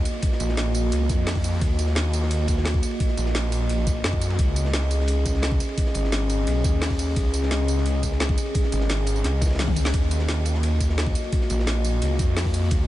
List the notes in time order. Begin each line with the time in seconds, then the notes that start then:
Already playing: A#3 F#4 D#5
0.05 closed hi-hat, ride, tambourine
0.14 ride
0.22 kick, closed hi-hat, ride
0.32 snare
0.40 A#1, closed hi-hat, ride, tambourine
0.49 snare
0.57 snare, closed hi-hat, ride
0.74 open hi-hat, ride, tambourine
0.92 C#2, closed hi-hat, ride
1.09 F2, kick, snare, closed hi-hat, ride, tambourine
1.27 snare, closed hi-hat, open hi-hat, tambourine
1.35 kick, snare
1.44 F2, closed hi-hat, ride, tambourine
1.61 D#2, kick, closed hi-hat, ride
1.79 closed hi-hat, ride, tambourine
1.86 snare
1.95 snare, closed hi-hat, ride
2.13 closed hi-hat, ride, tambourine
2.22 snare
2.31 closed hi-hat, ride
2.48 D#2, kick, snare, closed hi-hat, ride, tambourine
2.57 snare
2.65 snare, closed hi-hat, ride, tambourine
2.74 kick, snare
2.83 closed hi-hat, ride, tambourine
2.91 ride
3.00 kick, closed hi-hat, ride
3.08 snare
3.17 A#1, closed hi-hat, ride, tambourine
3.26 snare
3.35 snare, closed hi-hat, ride
3.52 open hi-hat, ride, tambourine
3.69 A#1, closed hi-hat, ride
3.87 kick, snare, closed hi-hat, ride, tambourine
4.04 F#2, snare, closed hi-hat, ride, tambourine
4.13 kick
4.21 closed hi-hat, ride, tambourine
4.30 ride
4.39 C#2 C#4 G#4, kick, closed hi-hat, ride
4.56 closed hi-hat, ride, tambourine
4.65 snare
4.74 snare, closed hi-hat, ride
4.90 closed hi-hat, ride, tambourine
5.00 snare
5.08 closed hi-hat, ride
5.25 C#2, kick, snare, closed hi-hat, ride, tambourine
5.34 snare
5.42 snare, closed hi-hat, ride, tambourine
5.52 kick, snare
5.60 closed hi-hat, ride, tambourine
5.69 ride
5.78 kick, closed hi-hat, ride
5.86 snare
5.94 G#1, closed hi-hat, ride, tambourine
6.04 snare
6.12 snare, closed hi-hat, ride
6.30 open hi-hat, ride, tambourine
6.47 B1, closed hi-hat, ride
6.64 D#2, kick, snare, closed hi-hat, ride, tambourine
6.81 snare, closed hi-hat, open hi-hat, tambourine
6.89 kick, snare
6.99 D#2, closed hi-hat, ride, tambourine
7.16 C#2, kick, closed hi-hat, ride
7.34 closed hi-hat, ride, tambourine
7.43 snare
7.51 snare, closed hi-hat, ride
7.68 closed hi-hat, ride, tambourine
7.78 snare
7.86 closed hi-hat, ride
8.03 C#2, kick, snare, closed hi-hat, ride, tambourine
8.11 snare
8.20 snare, closed hi-hat, ride, tambourine
8.29 kick, snare
8.38 closed hi-hat, ride, tambourine
8.46 ride
8.54 kick, closed hi-hat, ride
8.63 snare
8.72 G#1, closed hi-hat, ride, tambourine
8.81 snare
8.89 snare, closed hi-hat, ride
9.06 open hi-hat, ride, tambourine
9.16 tambourine
9.24 C#2, snare, closed hi-hat
9.41 kick, snare, closed hi-hat, ride, tambourine
9.45 snare, ride
9.50 snare, ride
9.55 snare, ride
9.59 snare, closed hi-hat, open hi-hat, high tom, tambourine
9.67 kick, snare, high tom
9.76 C#2, closed hi-hat, ride, tambourine
9.85 snare
9.94 D#2 A#3 F#4 D#5, kick, closed hi-hat, ride
10.11 closed hi-hat, ride, tambourine
10.19 snare
10.28 snare, closed hi-hat, ride
10.45 closed hi-hat, ride, tambourine
10.54 snare
10.63 closed hi-hat, ride
10.80 D#2, kick, snare, closed hi-hat, ride, tambourine
10.89 snare
10.98 snare, closed hi-hat, ride, tambourine
11.07 kick, snare
11.15 closed hi-hat, ride, tambourine
11.24 ride
11.32 kick, closed hi-hat, ride
11.41 snare
11.50 A#1, closed hi-hat, ride, tambourine
11.59 snare
11.67 snare, closed hi-hat, ride
11.85 open hi-hat, ride, tambourine
12.02 C#2, closed hi-hat, ride
12.19 F2, kick, snare, closed hi-hat, ride, tambourine
12.37 snare, closed hi-hat, open hi-hat, tambourine
12.45 kick, snare
12.54 F2, closed hi-hat, ride, tambourine
12.71 D#2, kick, closed hi-hat, ride